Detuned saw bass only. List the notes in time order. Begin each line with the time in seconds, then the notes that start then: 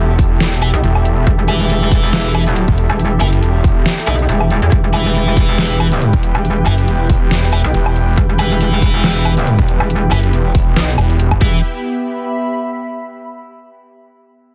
Already playing: E1
0.40 E1
0.62 E1
0.83 E1
2.68 E1
3.21 F#1
3.43 E1
6.13 E1
6.66 F#1
6.88 E1
7.31 E1
7.53 E1
7.74 E1
9.59 E1
10.12 F#1
10.33 E1
10.98 E1
11.31 G1